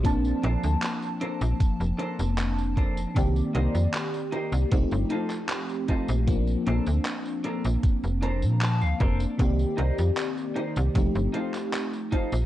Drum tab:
HH |x-x-x-x-x-x-x-x-|x-x-x-x-x-x-x-x-|x-x-x-x-x-x-x-x-|x-x-x-x-x-x-x-x-|
TB |xx-xxx-xxx-xxx-x|xx-xxx-xxx-xxx-x|xx-xxx-xxx-xxx-x|xx-xxx-xxx-xxx-x|
CP |----x-------x---|----x------xx---|----x-------x---|----x------xx---|
BD |o-------o-----o-|o-------o-----o-|o-------o-----o-|o-------o-----o-|